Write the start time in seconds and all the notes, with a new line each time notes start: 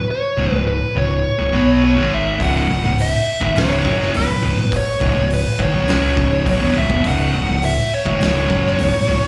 0.11 C#5
0.37 C#1 C#2 G#2
0.51 C#1 C#2 G#2 B4
0.68 B4
0.94 C#1 C#2 G#2 C#5
1.38 C#1 C#2 G#2
1.52 B1 B2 F#3 B3
1.84 C#5
1.96 G#1 G#2 D#3 G#3
2.14 E5
2.40 C#1 C#2 G#2 C#3 F#5, kick, open hi-hat
2.69 C#1 C#2 G#2
2.83 C#1 C#2 G#2
2.98 E5, open hi-hat
3.41 G#1 G#2 D#3, kick
3.56 C#1 C#2 G#2 C#3 C#5, snare, open hi-hat
3.85 F#1 F#2 C#3 F#3, kick
4.02 snare
4.14 C#1 C#2 G#2 B4, open hi-hat
4.30 muted distorted electric guitar stroke
4.44 C#1 C#2 G#2
4.58 muted fingered electric bass stroke, muted distorted electric guitar stroke
4.72 kick, open hi-hat
4.76 C#5
5.01 C#1 C#2 G#2, kick
5.15 C#1 C#2 G#2
5.30 B4, open hi-hat
5.59 G#1 G#2 D#3 C#5, kick
5.73 B1 B2 F#3
5.87 C#2 C#3 G#3 C#4, snare, open hi-hat
6.16 C#1 C#2 G#2 C#3, kick
6.45 B1 B2 F#3, kick, open hi-hat
6.49 C#5
6.60 E1 E2 B2
6.74 C#1 C#2 G#2 E5
6.89 E1 E2 B2, kick
7.03 C#1 C#2 G#2 C#3, kick, open hi-hat
7.07 F#5
7.33 C#1 C#2 G#2
7.48 C#1 C#2 G#2
7.62 E5, open hi-hat
7.94 C#5
8.05 G#1 G#2 D#3, kick
8.21 C#1 C#2 G#2 C#3, snare, open hi-hat
8.49 F#1 F#2 C#3 F#3, kick
8.67 snare
8.78 C#1 C#2 G#2, open hi-hat
8.93 muted distorted electric guitar stroke, muted fingered electric bass stroke
9.07 C#1 C#2 G#2
9.22 muted distorted electric guitar stroke, muted fingered electric bass stroke